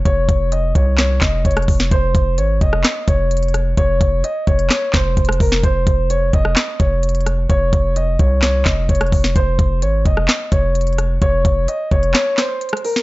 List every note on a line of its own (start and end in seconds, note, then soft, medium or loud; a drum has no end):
0.05 0.28 F1 loud
0.05 0.49 C#5 loud
0.05 kick loud
0.05 closed hi-hat medium
0.29 0.73 F1 loud
0.29 kick loud
0.29 closed hi-hat medium
0.52 0.71 D#5 medium
0.52 closed hi-hat medium
0.75 1.20 C2 loud
0.75 0.94 C#5 medium
0.75 kick loud
0.75 closed hi-hat medium
0.98 1.18 C#5 medium
0.98 snare loud
0.98 clap loud
0.98 closed hi-hat medium
1.21 1.44 F1 loud
1.21 1.41 D#5 medium
1.21 kick loud
1.21 snare loud
1.21 clap medium
1.21 closed hi-hat medium
1.45 1.67 F1 loud
1.45 1.89 C#5 medium
1.45 kick medium
1.45 closed hi-hat medium
1.51 closed hi-hat medium
1.57 cross-stick loud
1.57 closed hi-hat medium
1.62 closed hi-hat soft
1.68 1.91 F1 loud
1.68 kick medium
1.68 open hi-hat medium
1.80 snare medium
1.91 2.14 F1 loud
1.91 2.35 C5 loud
1.91 kick loud
1.91 closed hi-hat medium
2.15 2.39 F1 loud
2.15 kick loud
2.15 closed hi-hat medium
2.38 2.60 G#1 loud
2.38 2.57 C#5 medium
2.38 closed hi-hat medium
2.61 2.84 F1 loud
2.61 3.05 D#5 medium
2.61 kick loud
2.61 closed hi-hat medium
2.73 cross-stick medium
2.84 snare loud
2.84 clap medium
2.84 closed hi-hat medium
3.08 3.75 F1 loud
3.08 3.74 C#5 medium
3.08 kick loud
3.08 closed hi-hat medium
3.31 closed hi-hat medium
3.37 closed hi-hat medium
3.43 closed hi-hat medium
3.48 closed hi-hat soft
3.54 cross-stick medium
3.54 closed hi-hat medium
3.77 4.00 F1 loud
3.77 4.21 C#5 loud
3.77 kick loud
3.77 closed hi-hat medium
4.01 4.23 F1 loud
4.01 kick medium
4.01 closed hi-hat medium
4.24 4.43 D#5 medium
4.24 closed hi-hat medium
4.47 4.70 F1 loud
4.47 4.66 C#5 medium
4.47 kick loud
4.47 closed hi-hat soft
4.59 closed hi-hat medium
4.70 4.90 C#5 medium
4.70 cross-stick medium
4.70 snare loud
4.70 clap loud
4.70 closed hi-hat medium
4.93 5.16 F1 loud
4.93 5.38 C5 medium
4.93 kick loud
4.93 snare loud
4.93 clap medium
4.93 closed hi-hat medium
5.17 5.39 F1 loud
5.17 kick medium
5.17 closed hi-hat medium
5.25 cross-stick loud
5.25 closed hi-hat medium
5.32 closed hi-hat medium
5.40 5.63 F1 loud
5.40 5.60 A#4 medium
5.40 kick loud
5.40 open hi-hat medium
5.52 snare medium
5.63 5.86 F1 loud
5.63 6.07 C5 loud
5.63 kick loud
5.63 closed hi-hat medium
5.87 6.31 F1 loud
5.87 kick loud
5.87 closed hi-hat medium
6.10 6.29 C#5 medium
6.10 closed hi-hat medium
6.33 6.56 F1 loud
6.33 6.77 D#5 medium
6.33 kick loud
6.33 closed hi-hat medium
6.45 cross-stick medium
6.56 snare loud
6.56 clap loud
6.56 closed hi-hat medium
6.80 7.47 F1 loud
6.80 7.45 C#5 medium
6.80 kick loud
6.80 closed hi-hat medium
7.03 closed hi-hat medium
7.09 closed hi-hat medium
7.15 closed hi-hat medium
7.21 closed hi-hat soft
7.26 cross-stick medium
7.26 closed hi-hat medium
7.50 7.72 F1 loud
7.50 7.93 C#5 loud
7.50 kick loud
7.50 closed hi-hat medium
7.73 8.17 F1 loud
7.73 kick medium
7.73 closed hi-hat medium
7.96 8.15 D#5 medium
7.96 closed hi-hat medium
8.19 8.64 C2 loud
8.19 8.39 C#5 medium
8.19 kick loud
8.19 closed hi-hat medium
8.42 8.62 C#5 medium
8.42 snare loud
8.42 clap loud
8.42 closed hi-hat medium
8.65 8.88 F1 loud
8.65 8.85 D#5 medium
8.65 kick loud
8.65 snare loud
8.65 clap medium
8.65 closed hi-hat medium
8.89 9.11 F1 loud
8.89 9.33 C#5 medium
8.89 kick medium
8.89 closed hi-hat medium
8.95 closed hi-hat medium
9.01 cross-stick loud
9.01 closed hi-hat medium
9.07 closed hi-hat soft
9.12 9.35 F1 loud
9.12 kick medium
9.12 open hi-hat medium
9.24 snare medium
9.36 9.58 F1 loud
9.36 9.79 C5 loud
9.36 kick loud
9.36 closed hi-hat medium
9.59 9.84 F1 loud
9.59 kick loud
9.59 closed hi-hat medium
9.82 10.04 G#1 loud
9.82 10.02 C#5 medium
9.82 closed hi-hat medium
10.05 10.28 F1 loud
10.05 10.49 D#5 medium
10.05 kick loud
10.05 closed hi-hat medium
10.17 cross-stick medium
10.28 snare loud
10.28 clap loud
10.28 closed hi-hat medium
10.52 11.19 F1 loud
10.52 11.18 C#5 medium
10.52 kick loud
10.52 closed hi-hat medium
10.75 closed hi-hat medium
10.81 closed hi-hat medium
10.87 closed hi-hat medium
10.93 closed hi-hat soft
10.98 cross-stick medium
10.98 closed hi-hat medium
11.22 11.44 F1 loud
11.22 11.65 C#5 loud
11.22 kick loud
11.22 closed hi-hat medium
11.45 11.67 F1 loud
11.45 kick loud
11.45 closed hi-hat medium
11.68 11.87 D#5 medium
11.68 closed hi-hat medium
11.91 12.14 F1 loud
11.91 12.11 C#5 medium
11.91 kick loud
11.91 closed hi-hat soft
12.03 closed hi-hat medium
12.14 12.34 C#5 medium
12.14 cross-stick medium
12.14 snare loud
12.14 clap loud
12.14 closed hi-hat medium
12.37 12.82 C5 medium
12.37 snare loud
12.37 clap medium
12.37 closed hi-hat medium
12.61 closed hi-hat medium
12.69 cross-stick loud
12.69 closed hi-hat medium
12.77 closed hi-hat medium
12.85 13.03 A#4 medium
12.85 open hi-hat medium
12.96 snare medium